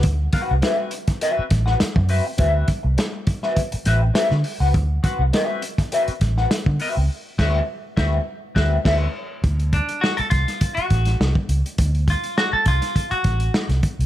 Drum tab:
CC |----------------|----------------|----------------|--x---------x---|
HH |x-x-x-xxx-x-x-o-|x-x-x-x-xxx-x-o-|x-x-x-xxxxx-x-o-|----------------|
SD |----o--o--ooo---|----o--o--o-oo--|----o--o--ooo---|--o---o---o-o---|
BD |o-o----o--o--o--|o-o---o-o-------|o-o----o--o--o--|--o---o---o-o---|

CC |----------------|----------------|
HH |xxxx-xxxxxxx--xx|xxxx--xxxxxx-xxx|
SD |----o-oo--ooo---|----o--o--o-oo--|
BD |o-o---o-o-o--o--|o-o---o-o-o---o-|